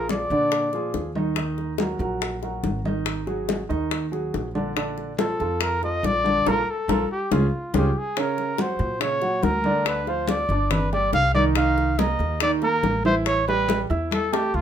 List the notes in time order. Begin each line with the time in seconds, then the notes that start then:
Already playing: A#1 F3 F4 G#4 A#4
0.09 D5, high bongo, high conga
0.30 A#2 D3 D4 D5, high bongo, high conga
0.52 high bongo, high conga
0.73 F3 F4 G#4, high bongo, high conga
0.94 D#2, high bongo, low bongo, high conga
1.15 D#3 D#4 D#5, high conga
1.36 D#3 D#4 D#5, high bongo, high conga
1.58 high bongo, high conga
1.78 F#3 F#4 A#4, high bongo, high conga
1.99 A#1 F#3 F#4 A#4, high bongo, high conga
2.22 high bongo, high conga
2.43 F#3 F#4 A#4, high bongo, high conga
2.63 G#1, high bongo, low bongo, high conga
2.85 D#3 D#4 D#5, high conga
3.06 high bongo, high conga
3.27 F#3 F#4 G#4, high bongo, high conga
3.49 high bongo, high conga
3.69 D#2 D#3 D#4 D#5, high bongo, high conga
3.91 high bongo, high conga
4.12 F#3 F#4 G#4, high bongo, high conga
4.34 A#1, high bongo, low bongo, high conga
4.55 D3 D4 D5, high conga
4.76 D3 D4 D5, high bongo, high conga
4.97 high bongo, high conga
5.19 F3 F4 A4, high bongo, high conga
5.40 F2 F3 F4 A4, high bongo, high conga
5.61 A#4, high bongo, high conga
5.82 F3 F4 A4 D#5, high bongo, high conga
6.03 A#1 D5, high bongo, low bongo, high conga
6.24 D3 D4 D5, high conga
6.46 A#1 F4 A4 A#4, low bongo, high conga
6.70 A4
6.88 A#1 F4 A4 A#4, low bongo, high conga
7.11 G4
7.31 C#2 C#4 F4 G#4, low bongo, high conga
7.74 C#2 C#4 F4 G4 G#4, low bongo, high conga
7.98 G#4
8.17 C#3 C#4 A#4 C#5, high bongo, high conga
8.38 high bongo, high conga
8.58 F#3 F#4 C5 F#5, high bongo, high conga
8.79 A#2, high bongo, high conga
9.00 C#3 C#4 C#5, high bongo, high conga
9.22 F#3 F#4 F#5, high bongo, high conga
9.43 D2 A#4, high bongo, low bongo, high conga
9.64 D3 D4 D5, high conga
9.85 B4, high bongo, high conga
10.07 F3 F4 C5 F5, high bongo, high conga
10.27 D5, high bongo, high conga
10.49 G1 D4 D5 D6, high bongo, high conga
10.71 B4, high bongo, high conga, low conga
10.92 G3 G4 D5 G5, high bongo, high conga
11.13 C2 F5, high bongo, low bongo, high conga
11.34 D#3 D#4 D5 D#5, high conga
11.55 D#3 D#4 D#5 F5, high bongo
11.78 high bongo, high conga
11.98 A#3 A#4 D#5 A#5, high bongo, high conga
12.19 D#2, high bongo, high conga
12.40 D#3 D#4 D5 D#5, high bongo, high conga
12.62 A#3 A#4 A#5, high bongo, high conga
12.83 A1, high bongo, low bongo, high conga
13.05 E3 E4 C5 E5, high conga
13.26 C#5, high bongo, high conga
13.47 G3 G4 B4 G5, high bongo, high conga
13.69 high bongo, high conga
13.90 E2 E4 E5 E6, high bongo, high conga
14.11 A4, high bongo, high conga
14.32 A3 G4 A4 A5, high bongo
14.54 D2 F4